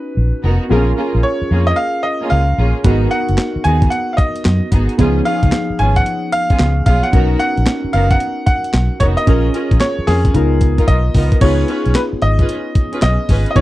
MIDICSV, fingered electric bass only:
0, 0, Header, 1, 3, 480
1, 0, Start_track
1, 0, Tempo, 535714
1, 629, Time_signature, 4, 2, 24, 8
1, 12195, End_track
2, 0, Start_track
2, 0, Title_t, "Fingered electric bass"
2, 0, Program_c, 0, 33
2, 153, Note_on_c, 0, 34, 86
2, 273, Note_off_c, 0, 34, 0
2, 392, Note_on_c, 0, 29, 81
2, 513, Note_off_c, 0, 29, 0
2, 633, Note_on_c, 0, 34, 104
2, 820, Note_off_c, 0, 34, 0
2, 1027, Note_on_c, 0, 34, 80
2, 1092, Note_off_c, 0, 34, 0
2, 1352, Note_on_c, 0, 41, 79
2, 1540, Note_off_c, 0, 41, 0
2, 2075, Note_on_c, 0, 37, 75
2, 2261, Note_off_c, 0, 37, 0
2, 2314, Note_on_c, 0, 34, 98
2, 2434, Note_off_c, 0, 34, 0
2, 2551, Note_on_c, 0, 32, 108
2, 2739, Note_off_c, 0, 32, 0
2, 2949, Note_on_c, 0, 30, 83
2, 3014, Note_off_c, 0, 30, 0
2, 3273, Note_on_c, 0, 39, 76
2, 3460, Note_off_c, 0, 39, 0
2, 3994, Note_on_c, 0, 42, 89
2, 4114, Note_off_c, 0, 42, 0
2, 4231, Note_on_c, 0, 32, 81
2, 4352, Note_off_c, 0, 32, 0
2, 4471, Note_on_c, 0, 37, 99
2, 4659, Note_off_c, 0, 37, 0
2, 4866, Note_on_c, 0, 37, 90
2, 4932, Note_off_c, 0, 37, 0
2, 5192, Note_on_c, 0, 32, 86
2, 5379, Note_off_c, 0, 32, 0
2, 5913, Note_on_c, 0, 37, 97
2, 6100, Note_off_c, 0, 37, 0
2, 6151, Note_on_c, 0, 35, 86
2, 6272, Note_off_c, 0, 35, 0
2, 6393, Note_on_c, 0, 35, 115
2, 6580, Note_off_c, 0, 35, 0
2, 6788, Note_on_c, 0, 34, 87
2, 6853, Note_off_c, 0, 34, 0
2, 7114, Note_on_c, 0, 30, 87
2, 7300, Note_off_c, 0, 30, 0
2, 7831, Note_on_c, 0, 35, 83
2, 7952, Note_off_c, 0, 35, 0
2, 8071, Note_on_c, 0, 29, 83
2, 8192, Note_off_c, 0, 29, 0
2, 8310, Note_on_c, 0, 34, 96
2, 8498, Note_off_c, 0, 34, 0
2, 8704, Note_on_c, 0, 34, 80
2, 8771, Note_off_c, 0, 34, 0
2, 9030, Note_on_c, 0, 41, 86
2, 9218, Note_off_c, 0, 41, 0
2, 9270, Note_on_c, 0, 37, 97
2, 9647, Note_off_c, 0, 37, 0
2, 9750, Note_on_c, 0, 35, 87
2, 9938, Note_off_c, 0, 35, 0
2, 9989, Note_on_c, 0, 37, 91
2, 10111, Note_off_c, 0, 37, 0
2, 10230, Note_on_c, 0, 37, 99
2, 10418, Note_off_c, 0, 37, 0
2, 10628, Note_on_c, 0, 35, 89
2, 10693, Note_off_c, 0, 35, 0
2, 10951, Note_on_c, 0, 32, 90
2, 11139, Note_off_c, 0, 32, 0
2, 11673, Note_on_c, 0, 35, 91
2, 11793, Note_off_c, 0, 35, 0
2, 11910, Note_on_c, 0, 32, 90
2, 12032, Note_off_c, 0, 32, 0
2, 12150, Note_on_c, 0, 37, 108
2, 12195, Note_off_c, 0, 37, 0
2, 12195, End_track
3, 0, Start_track
3, 0, Title_t, "Muted fingered electric bass strokes"
3, 1268, Note_on_c, 9, 29, 46
3, 1358, Note_off_c, 9, 29, 0
3, 3188, Note_on_c, 9, 29, 47
3, 3278, Note_off_c, 9, 29, 0
3, 5108, Note_on_c, 9, 29, 46
3, 5197, Note_off_c, 9, 29, 0
3, 7027, Note_on_c, 9, 29, 45
3, 7117, Note_off_c, 9, 29, 0
3, 8947, Note_on_c, 9, 29, 47
3, 9037, Note_off_c, 9, 29, 0
3, 10867, Note_on_c, 9, 29, 48
3, 10956, Note_off_c, 9, 29, 0
3, 12195, End_track
0, 0, End_of_file